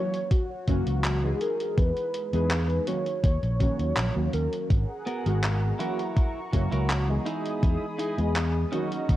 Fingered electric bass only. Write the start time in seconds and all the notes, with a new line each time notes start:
0.68 F#1
0.86 C#2
1.78 E2
2.33 E2
3.24 D#2
3.43 A#1
3.79 D#2
3.97 A#1
4.16 D#2
4.34 D#2
4.70 G#1
5.26 G#1
6.53 F#1
6.72 C#2
7.63 E2
8.18 E2
9.09 D#2